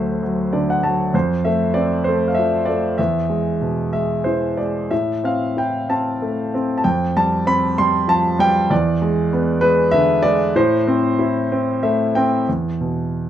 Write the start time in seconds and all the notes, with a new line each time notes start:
Already playing: D2 F#3 A3 C5
0.23 F#3
0.53 D3 D5
0.70 F#5
0.83 F#3 A5
1.14 F2 C5
1.45 A3 E5
1.74 C4 D5
2.04 A3 C5
2.28 F5
2.35 E5
2.39 F3
2.65 A3 D5
2.98 E2 E5
3.30 G#3
3.61 B2
3.93 G#3 E5
4.24 E3 C5
4.57 G#3 D5
4.91 A2 E5
5.24 C4 F5
5.57 E4 G5
5.89 C4 A5
6.22 A3
6.54 C4
6.78 A5
6.84 F2 G5
7.17 G3 A5
7.46 C4 B5
7.78 G3 C6
8.08 F3 A5
8.39 G3 G5
8.70 E2 D5
9.02 G#3
9.33 B3
9.61 G#3 B4
9.91 D3 E5
10.22 G#3 D5
10.56 A2 C5
10.87 C4
11.19 E4
11.52 C4
11.83 A3 E5
12.15 C4 G5
12.49 E2
12.81 B2